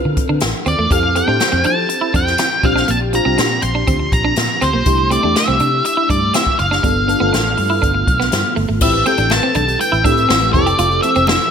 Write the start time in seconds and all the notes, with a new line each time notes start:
Already playing: C4 D4 E4 F4 A4 A#4 B4
0.05 D3, muted clean electric guitar stroke
0.17 kick, closed hi-hat
0.29 D3 D4
0.40 A1, muted clean electric guitar stroke, snare, closed hi-hat
0.66 D#2 C4 D5, closed hi-hat
0.79 E2 A3
0.90 F2 C4 E4 G4 A4 F5, kick, closed hi-hat
1.03 muted clean electric guitar stroke
1.15 C4 E4 G4 A4 G5, closed hi-hat
1.27 A2 C4 D4 E4 G4 C5
1.40 muted clean electric guitar stroke, snare, closed hi-hat
1.52 F2 C4
1.64 F3 D4 A5, closed hi-hat
1.89 muted clean electric guitar stroke, closed hi-hat
2.01 E4
2.14 F2 D4 G5, kick, closed hi-hat
2.27 snare
2.38 C4, snare, closed hi-hat
2.63 A#1 C4 D4 F4 G4 F5, muted clean electric guitar stroke, kick, closed hi-hat
2.76 D4, snare
2.88 A#1 A#3 A5, closed hi-hat
3.13 C4 D4 F4 G4 A#5, muted clean electric guitar stroke, closed hi-hat
3.25 C2 C4 D4 F4 G4
3.38 A#2 D4, snare, closed hi-hat
3.62 A#1 C6, muted clean electric guitar stroke, closed hi-hat
3.75 D4
3.87 D2 C4, kick, closed hi-hat
4.00 muted clean electric guitar stroke
4.12 A#1 A#5, kick, closed hi-hat
4.25 D4
4.36 A#2, muted clean electric guitar stroke, snare, closed hi-hat
4.61 D2 C4 C5, snare, closed hi-hat
4.73 B1 A#3
4.86 C2 A3 D4 E4 G4, kick, closed hi-hat
4.98 muted clean electric guitar stroke
5.10 A3 C4 D4 E4 G4 D5, closed hi-hat
5.23 E2 A3 D4 E4 G4
5.36 E5, muted clean electric guitar stroke, snare, closed hi-hat
5.48 C2 C4
5.60 C3 D4, closed hi-hat
5.85 E5, muted clean electric guitar stroke, closed hi-hat
5.97 E4
6.09 G2 D4 D5, kick, closed hi-hat
6.34 C4 E5, snare, closed hi-hat
6.47 kick
6.59 F#1 F5, muted clean electric guitar stroke, closed hi-hat
6.71 D4, snare
6.83 G1 G3 B3 D4 F4 A4, kick, closed hi-hat
7.08 B3 D4 F4 A4, muted clean electric guitar stroke, closed hi-hat
7.20 G1 A3 B3 D4 F4 A4
7.26 B3
7.33 A1 D4, snare, closed hi-hat
7.57 G2, muted clean electric guitar stroke, open hi-hat
7.70 E4
7.82 G1 D4, kick, closed hi-hat
7.94 muted clean electric guitar stroke
8.07 B1, kick, closed hi-hat
8.20 B3, snare
8.32 G2, muted clean electric guitar stroke, snare, closed hi-hat
8.56 G1 A3, open hi-hat
8.69 G#1 A3
8.81 A1 C4 E4 G4 B4 E5, kick, crash, muted conga
8.94 muted clean electric guitar stroke
9.06 C4 E4 G4 A4 G5, closed hi-hat, muted conga
9.18 A1 D4, closed hi-hat
9.30 A5, muted clean electric guitar stroke, snare, high conga
9.43 C4
9.54 B1 D4 A5, closed hi-hat, muted conga, low conga
9.68 closed hi-hat
9.80 G5, muted clean electric guitar stroke, closed hi-hat, muted conga
9.92 A1 E4, closed hi-hat
10.04 A2 C4 D4 E4 G4 A4 E5, kick, closed hi-hat
10.12 B4
10.17 closed hi-hat
10.29 A1 C4, snare, high conga
10.42 closed hi-hat, high conga
10.53 F1 C4 E4 G4 A4 D5, muted clean electric guitar stroke, kick, closed hi-hat
10.66 G4, closed hi-hat
10.79 F1 F4, closed hi-hat, muted conga
10.91 closed hi-hat
11.02 E3 C4 G4 A4 E5, muted clean electric guitar stroke, closed hi-hat, muted conga
11.15 F1 C4, closed hi-hat
11.27 D4 E5, snare, high conga
11.41 closed hi-hat